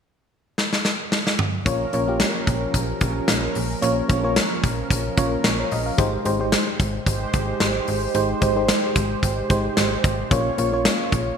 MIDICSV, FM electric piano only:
0, 0, Header, 1, 2, 480
1, 0, Start_track
1, 0, Tempo, 540541
1, 1476, Time_signature, 4, 2, 24, 8
1, 10101, End_track
2, 0, Start_track
2, 0, Title_t, "FM electric piano"
2, 0, Program_c, 0, 5
2, 1470, Note_on_c, 0, 58, 77
2, 1473, Note_on_c, 0, 61, 69
2, 1476, Note_on_c, 0, 65, 75
2, 1478, Note_on_c, 0, 73, 89
2, 1639, Note_off_c, 0, 58, 0
2, 1640, Note_off_c, 0, 61, 0
2, 1642, Note_off_c, 0, 65, 0
2, 1643, Note_off_c, 0, 73, 0
2, 1666, Control_c, 0, 64, 127
2, 1711, Note_on_c, 0, 58, 76
2, 1713, Note_on_c, 0, 61, 72
2, 1718, Note_on_c, 0, 65, 72
2, 1719, Note_on_c, 0, 73, 89
2, 1800, Note_off_c, 0, 58, 0
2, 1801, Note_off_c, 0, 61, 0
2, 1804, Note_off_c, 0, 65, 0
2, 1804, Note_off_c, 0, 73, 0
2, 1838, Note_on_c, 0, 58, 75
2, 1842, Note_on_c, 0, 61, 74
2, 1846, Note_on_c, 0, 65, 72
2, 1851, Note_on_c, 0, 67, 83
2, 2466, Note_off_c, 0, 58, 0
2, 2468, Note_off_c, 0, 61, 0
2, 2470, Note_off_c, 0, 65, 0
2, 2473, Note_off_c, 0, 67, 0
2, 3387, Note_on_c, 0, 58, 83
2, 3390, Note_on_c, 0, 61, 75
2, 3394, Note_on_c, 0, 65, 71
2, 3396, Note_on_c, 0, 73, 92
2, 3558, Note_off_c, 0, 58, 0
2, 3559, Note_off_c, 0, 61, 0
2, 3561, Note_off_c, 0, 65, 0
2, 3562, Note_off_c, 0, 73, 0
2, 3628, Note_on_c, 0, 58, 80
2, 3631, Note_on_c, 0, 61, 73
2, 3634, Note_on_c, 0, 65, 69
2, 3638, Note_on_c, 0, 73, 83
2, 3719, Note_off_c, 0, 58, 0
2, 3720, Note_off_c, 0, 61, 0
2, 3722, Note_off_c, 0, 65, 0
2, 3724, Note_off_c, 0, 73, 0
2, 3760, Note_on_c, 0, 58, 75
2, 3765, Note_on_c, 0, 61, 73
2, 3768, Note_on_c, 0, 65, 72
2, 3770, Note_on_c, 0, 73, 87
2, 4310, Note_off_c, 0, 58, 0
2, 4312, Note_off_c, 0, 61, 0
2, 4313, Note_off_c, 0, 65, 0
2, 4315, Note_off_c, 0, 73, 0
2, 4590, Note_on_c, 0, 58, 80
2, 4594, Note_on_c, 0, 61, 72
2, 4596, Note_on_c, 0, 65, 70
2, 4601, Note_on_c, 0, 73, 85
2, 4838, Note_off_c, 0, 73, 0
2, 4968, Note_on_c, 0, 73, 60
2, 5068, Note_off_c, 0, 58, 0
2, 5069, Note_off_c, 0, 61, 0
2, 5070, Note_off_c, 0, 65, 0
2, 5070, Note_off_c, 0, 73, 0
2, 5078, Note_on_c, 0, 75, 66
2, 5202, Note_off_c, 0, 75, 0
2, 5205, Note_on_c, 0, 77, 63
2, 5308, Note_on_c, 0, 56, 84
2, 5311, Note_on_c, 0, 63, 74
2, 5314, Note_on_c, 0, 67, 77
2, 5317, Note_on_c, 0, 72, 88
2, 5325, Control_c, 0, 64, 0
2, 5434, Note_off_c, 0, 77, 0
2, 5478, Note_off_c, 0, 56, 0
2, 5480, Note_off_c, 0, 63, 0
2, 5481, Note_off_c, 0, 67, 0
2, 5482, Note_off_c, 0, 72, 0
2, 5504, Control_c, 0, 64, 127
2, 5548, Note_on_c, 0, 56, 77
2, 5550, Note_on_c, 0, 63, 74
2, 5554, Note_on_c, 0, 67, 74
2, 5558, Note_on_c, 0, 72, 89
2, 5639, Note_off_c, 0, 56, 0
2, 5640, Note_off_c, 0, 63, 0
2, 5641, Note_off_c, 0, 67, 0
2, 5644, Note_off_c, 0, 72, 0
2, 5678, Note_on_c, 0, 56, 81
2, 5681, Note_on_c, 0, 63, 71
2, 5686, Note_on_c, 0, 67, 70
2, 5689, Note_on_c, 0, 72, 87
2, 6306, Note_off_c, 0, 56, 0
2, 6307, Note_off_c, 0, 63, 0
2, 6310, Note_off_c, 0, 67, 0
2, 6312, Note_off_c, 0, 72, 0
2, 7232, Note_on_c, 0, 56, 84
2, 7234, Note_on_c, 0, 63, 73
2, 7240, Note_on_c, 0, 67, 70
2, 7242, Note_on_c, 0, 72, 89
2, 7400, Note_off_c, 0, 56, 0
2, 7401, Note_off_c, 0, 63, 0
2, 7404, Note_off_c, 0, 67, 0
2, 7405, Note_off_c, 0, 72, 0
2, 7466, Note_on_c, 0, 56, 81
2, 7470, Note_on_c, 0, 63, 73
2, 7474, Note_on_c, 0, 67, 73
2, 7479, Note_on_c, 0, 72, 86
2, 7558, Note_off_c, 0, 56, 0
2, 7560, Note_off_c, 0, 63, 0
2, 7562, Note_off_c, 0, 67, 0
2, 7564, Note_off_c, 0, 72, 0
2, 7600, Note_on_c, 0, 56, 78
2, 7603, Note_on_c, 0, 63, 71
2, 7606, Note_on_c, 0, 67, 75
2, 7611, Note_on_c, 0, 72, 84
2, 8150, Note_off_c, 0, 56, 0
2, 8151, Note_off_c, 0, 63, 0
2, 8153, Note_off_c, 0, 67, 0
2, 8155, Note_off_c, 0, 72, 0
2, 8431, Note_on_c, 0, 56, 76
2, 8434, Note_on_c, 0, 63, 67
2, 8437, Note_on_c, 0, 67, 69
2, 8441, Note_on_c, 0, 72, 85
2, 8908, Note_off_c, 0, 56, 0
2, 8910, Note_off_c, 0, 63, 0
2, 8911, Note_off_c, 0, 67, 0
2, 8913, Note_off_c, 0, 72, 0
2, 9153, Note_on_c, 0, 58, 80
2, 9157, Note_on_c, 0, 61, 73
2, 9160, Note_on_c, 0, 65, 73
2, 9165, Control_c, 0, 64, 0
2, 9165, Note_on_c, 0, 73, 87
2, 9320, Note_off_c, 0, 58, 0
2, 9323, Note_off_c, 0, 61, 0
2, 9324, Note_off_c, 0, 65, 0
2, 9326, Note_off_c, 0, 73, 0
2, 9343, Control_c, 0, 64, 127
2, 9392, Note_on_c, 0, 58, 79
2, 9397, Note_on_c, 0, 61, 68
2, 9401, Note_on_c, 0, 65, 71
2, 9403, Note_on_c, 0, 73, 84
2, 9481, Note_off_c, 0, 58, 0
2, 9483, Note_off_c, 0, 61, 0
2, 9485, Note_off_c, 0, 65, 0
2, 9486, Note_off_c, 0, 73, 0
2, 9522, Note_on_c, 0, 58, 76
2, 9526, Note_on_c, 0, 61, 69
2, 9531, Note_on_c, 0, 65, 68
2, 9533, Note_on_c, 0, 73, 88
2, 10101, Note_off_c, 0, 58, 0
2, 10101, Note_off_c, 0, 61, 0
2, 10101, Note_off_c, 0, 65, 0
2, 10101, Note_off_c, 0, 73, 0
2, 10101, End_track
0, 0, End_of_file